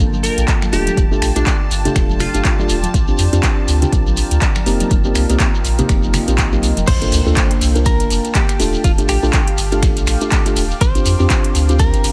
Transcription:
Already playing: A#3 D4 F4 A4 G5 A5
0.00 G1, shekere
0.13 high conga, shekere
0.23 A#4, open hi-hat, shekere
0.38 A#1, closed hi-hat, shekere
0.48 kick, clap, closed hi-hat, shekere
0.62 finger snap, high conga, shekere
0.73 D#1 A3 D4 F4 G4 D5, open hi-hat, shekere
0.87 closed hi-hat, high conga, shekere
0.97 D#1, kick, closed hi-hat, shekere
1.11 A3 D4 F4 G4, shekere
1.22 A#1, finger snap, open hi-hat, shekere
1.36 A#1 A3 D4 F4 G4, closed hi-hat, shekere
1.46 D4, kick, clap, closed hi-hat, shekere
1.71 G1, open hi-hat, shekere
1.85 A3 D4 F4 G4, closed hi-hat, low conga, shekere
1.96 D#1, finger snap, kick, closed hi-hat, shekere
2.09 high conga, shekere
2.20 F4, finger snap, open hi-hat, low conga, shekere
2.34 G1 A3 D4 F4 G4, closed hi-hat, shekere
2.45 kick, clap, closed hi-hat, shekere
2.59 A3 D4 F4 G4, high conga, shekere
2.69 D#1, open hi-hat, shekere
2.83 closed hi-hat, high conga, shekere
2.94 A#1 A#4, kick, closed hi-hat, shekere
3.07 C4 D4 F4 G4, shekere
3.18 F2, open hi-hat, shekere
3.33 F2 C4 D4 F4 G4, closed hi-hat, shekere
3.43 kick, clap, closed hi-hat, shekere
3.68 D2, open hi-hat, shekere
3.82 C4 D4 F4 G4, closed hi-hat, low conga, shekere
3.92 A#1, kick, closed hi-hat, shekere
4.07 high conga, shekere
4.17 open hi-hat, shekere
4.31 D2, closed hi-hat, shekere
4.42 kick, clap, closed hi-hat, shekere
4.55 finger snap, high conga, shekere
4.66 F1 A#3 C4 D#4 F4 G4 D#5 G5, open hi-hat, shekere
4.80 closed hi-hat, high conga, shekere
4.90 F1, kick, closed hi-hat, shekere
5.04 A#3 C4 D#4 G4, shekere
5.15 C2, finger snap, open hi-hat, shekere
5.29 C2 A#3 C4 D#4 G4, closed hi-hat, shekere
5.40 kick, clap, closed hi-hat, shekere
5.55 shekere
5.65 A#1, open hi-hat, shekere
5.78 A#3 C4 D#4 G4, closed hi-hat, low conga, shekere
5.89 F1, finger snap, kick, closed hi-hat, shekere
6.03 high conga, shekere
6.13 finger snap, open hi-hat, low conga, shekere
6.28 A#1 A#3 C4 D#4 G4, closed hi-hat, shekere
6.38 kick, clap, closed hi-hat, shekere
6.52 A#3 C4 D#4 G4, high conga, shekere
6.63 C2, open hi-hat, shekere
6.77 F1, closed hi-hat, high conga, shekere
6.87 G1 C5 F5 G5 A5, kick, closed hi-hat, crash, ride, impact, shekere
7.01 A#3 D4 F4 A4, closed hi-hat, shekere
7.12 D2, open hi-hat, ride, shekere
7.26 D2 A#3 D4 F4 A4, shekere
7.37 kick, clap, closed hi-hat, ride, shekere
7.51 closed hi-hat
7.61 C2, open hi-hat, ride, shekere
7.75 A#3 D4 F4 A#4, closed hi-hat, shekere
7.85 A#4, kick, closed hi-hat, ride, shekere
8.00 D1, closed hi-hat, shekere
8.10 F1, open hi-hat, ride, shekere
8.24 closed hi-hat, shekere
8.35 G4, kick, clap, closed hi-hat, ride, shekere
8.49 finger snap, closed hi-hat, shekere
8.59 D#1 A3 D4 F4 G4 F5 D6, open hi-hat, ride, shekere
8.73 shekere
8.84 D#1 F4, kick, closed hi-hat, ride, shekere
8.98 A3 D4 F4 G4, closed hi-hat, shekere
9.09 A#1 G4, finger snap, open hi-hat, ride, shekere
9.23 A#1 A3 D4 F4 G4, shekere
9.33 kick, clap, closed hi-hat, ride, shekere
9.48 closed hi-hat
9.58 G1, open hi-hat, ride, shekere
9.72 A3 D4 F4 G4, closed hi-hat, shekere
9.83 finger snap, kick, closed hi-hat, ride, shekere
9.97 A#1, closed hi-hat, shekere
10.07 A#1, finger snap, open hi-hat, ride, shekere
10.21 A3 D4 F4 G4, closed hi-hat, shekere
10.32 kick, clap, closed hi-hat, ride, shekere
10.46 A3 D4 F4 G4, closed hi-hat, shekere
10.56 D#1, open hi-hat, ride, shekere
10.71 shekere
10.81 A#1 A#4 C5 F5 G5, kick, closed hi-hat, ride, shekere
10.95 C4 D4 F4 G4, closed hi-hat, shekere
11.06 F2, open hi-hat, ride, shekere
11.19 F2 C4 D4 F4 G4, shekere
11.30 kick, clap, closed hi-hat, ride, shekere
11.44 closed hi-hat
11.55 D2, open hi-hat, ride, shekere
11.69 C4 D4 F4 G4, closed hi-hat, shekere
11.79 A#4, kick, closed hi-hat, ride, shekere
11.93 F1, closed hi-hat, shekere
12.04 G1, open hi-hat, ride, shekere

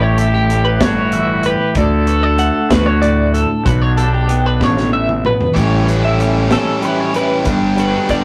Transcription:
Already playing: A1 A2 G3 E4 G4
0.02 C#5
0.18 E4 A4, closed hi-hat
0.34 G4
0.50 A3, closed hi-hat
0.65 B4
0.80 G1 D4 F#4 C#5, kick, snare, closed hi-hat
0.96 E4
1.12 E3 E5, closed hi-hat
1.43 G4 B4, closed hi-hat
1.75 D2 D3 F#4 A4 D5, kick, closed hi-hat
2.07 F#4 B4, closed hi-hat
2.23 D5
2.37 A3 F#5, closed hi-hat
2.70 D2 D4 F#4 B4, kick, snare, closed hi-hat
2.86 C#5
3.02 A2 D5, closed hi-hat
3.34 A4, closed hi-hat
3.65 B1 B2 D4 F#4 B4, kick, closed hi-hat
3.82 C#5
3.97 G4 A4, closed hi-hat
4.13 G4 A4
4.28 B3, closed hi-hat
4.46 B4
4.60 A1 D3 C#5, kick, snare
4.77 snare
4.93 E5
5.09 mid tom
5.25 B2 B4, mid tom
5.41 floor tom
5.54 A1 A2 E3 G3 C#4 G4 C#5, kick, closed hi-hat
5.86 G3 C#4 D4 G4 B4, closed hi-hat
6.05 E4 E5
6.18 E3 G3 A3 C#4 G4, closed hi-hat
6.50 G3 C#4 G4 A4, snare, closed hi-hat
6.54 C#4
6.81 E3 G3 C#4 G4 B4, closed hi-hat
7.00 C#5
7.13 G3 C#4 E4 G4 B4, closed hi-hat
7.45 G1 G2 G3 B3 D4 G4, kick, closed hi-hat
7.76 B3 D4 F#4 G4 B4, closed hi-hat
8.09 G1 G3 B3 D4 G4 D5, kick, closed hi-hat

